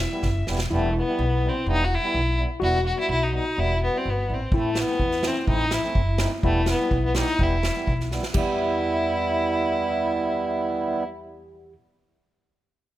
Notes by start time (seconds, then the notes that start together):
Already playing: E4 E5
0.11 G3 B3 E4
0.22 F#1, kick, snare
0.47 E1 G3 B3 E4, snare
0.58 snare
0.70 E1 G3 A3 B3 E4
0.98 B3
1.07 G3 B3 E4
1.19 B1
1.43 G3 B3 E4
1.48 C4
1.66 E1 G3 B3 E4
1.71 D#4
1.84 F#4
1.94 E4
2.03 G3 B3 E4
2.14 B1
2.38 G3 B3 E4
2.60 E1 G3 B3 E4 F#4
2.86 F#4
2.95 G3 B3 E4
3.00 E4
3.09 B1 E4
3.23 D#4
3.32 G3 B3 D#4
3.57 E1 G3 B3 E4
3.84 B3
3.91 G3 B3 E4
3.97 C4
4.05 G1
4.10 B3
4.27 A1 G3 B3 E4
4.34 C4
4.51 A1 A3 C4 E4, kick
4.58 A3
4.75 snare
4.79 B3
4.87 A3 C4 E4
4.99 E2, kick
5.11 snare
5.23 A3 C4 E4, snare
5.27 C4
5.47 A1 A3 C4 D#4 E4, kick
5.71 E4, snare
5.83 A3 C4 E4
5.95 F#1, kick
6.18 A3 C4 D#4, snare
6.43 E1 G3 A3 B3 E4, kick
6.66 B3, snare
6.79 G3 B3 E4
6.91 B1, kick
7.05 B3
7.15 G3 B3 D#4 G4, snare
7.27 snare
7.38 E1 G3 B3 E4, kick
7.43 E4
7.63 snare
7.75 G3 B3 E4
7.87 B1, kick
8.00 snare
8.11 G3 B3 E4, snare
8.23 snare
8.33 E2 G3 E4 G4, kick, crash
8.37 B3